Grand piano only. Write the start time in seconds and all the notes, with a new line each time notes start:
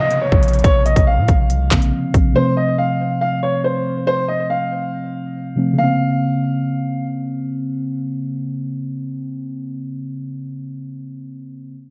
0.00 D#5
0.21 C#5
0.64 C#5
0.86 D#5
1.07 F5
2.36 C5
2.57 D#5
2.78 F5
3.21 F5
3.43 C#5
3.64 C5
4.07 C5
4.28 D#5
4.50 F5
5.78 F5